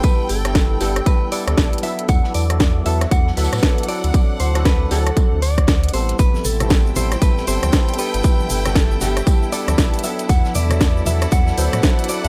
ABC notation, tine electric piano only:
X:1
M:4/4
L:1/16
Q:"Swing 16ths" 1/4=117
K:G
V:1 name="Tine electric piano"
[G,B,DEA]3 [G,B,DEA]3 [G,B,DEA] z [G,B,DEA]2 [G,B,DEA]2 [G,B,DEA]2 [F,B,DEA]2- | [F,B,DEA]3 [F,B,DEA]3 [F,B,DEA] z [F,B,DEA]2 [F,B,DEA]2 [F,B,DEA]2 [F,CDEA]2- | [F,CDEA]3 [F,CDEA]3 [F,CDEA] z [F,CDEA]2 z4 [G,B,CEA]2- | [G,B,CEA]3 [G,B,CEA]3 [G,B,CEA] z [G,B,CEA]2 [G,B,CEA]2 [G,B,CEA]2 [G,B,DEA]2- |
[G,B,DEA]3 [G,B,DEA]3 [G,B,DEA] z [G,B,DEA]2 [G,B,DEA]2 [G,B,EA]2 [F,B,DEA]2- | [F,B,DEA]3 [F,B,DEA]3 [F,B,DEA] z [F,B,DEA]2 [F,B,DEA]2 [F,B,DEA]2 [F,CDEA]2 |]